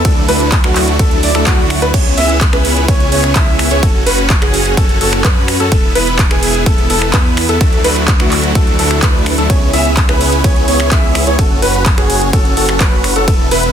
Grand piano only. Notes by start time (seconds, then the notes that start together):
0.05 A4
0.28 B4
0.64 F#4
0.99 A4
1.23 D5
1.35 A4
1.47 F#4
1.82 B4
1.94 C#5
2.17 E5
2.53 B4
2.88 C#5
3.12 C#5
3.36 E5
3.71 C#5
3.83 A4
4.06 B4
4.42 G#4
4.77 A4
5.01 A4
5.24 B4
5.60 A4
5.72 A4
5.95 B4
6.31 G#4
6.66 A4
6.90 A4
7.13 B4
7.49 A4
7.61 A4
7.84 B4
8.20 F#4
8.55 A4
8.79 A4
9.03 B4
9.38 A4
9.50 C#5
9.73 E5
10.09 B4
10.44 C#5
10.68 C#5
10.91 E5
11.27 C#5
11.39 A4
11.62 B4
11.98 G#4
12.33 A4
12.57 A4
12.80 B4
13.16 A4
13.28 A4
13.51 B4